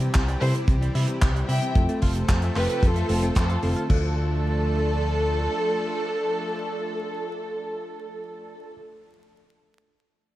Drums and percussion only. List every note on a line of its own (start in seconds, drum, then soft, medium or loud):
0.00 closed hi-hat medium
0.14 kick loud
0.14 clap loud
0.14 closed hi-hat medium
0.28 closed hi-hat medium
0.42 open hi-hat loud
0.55 closed hi-hat medium
0.68 kick loud
0.68 closed hi-hat medium
0.82 closed hi-hat medium
0.95 open hi-hat loud
1.08 closed hi-hat medium
1.22 kick loud
1.22 clap loud
1.22 closed hi-hat medium
1.36 closed hi-hat medium
1.49 open hi-hat loud
1.62 closed hi-hat medium
1.75 kick loud
1.75 closed hi-hat medium
1.89 closed hi-hat medium
2.02 kick medium
2.02 open hi-hat loud
2.15 closed hi-hat medium
2.28 kick loud
2.28 clap loud
2.28 closed hi-hat medium
2.42 closed hi-hat medium
2.56 clap soft
2.56 open hi-hat loud
2.69 closed hi-hat medium
2.83 kick loud
2.83 closed hi-hat medium
2.96 closed hi-hat medium
3.09 open hi-hat loud
3.23 closed hi-hat medium
3.35 kick loud
3.35 clap loud
3.35 closed hi-hat medium
3.50 closed hi-hat medium
3.63 open hi-hat loud
3.77 closed hi-hat medium
3.90 kick loud
3.90 crash medium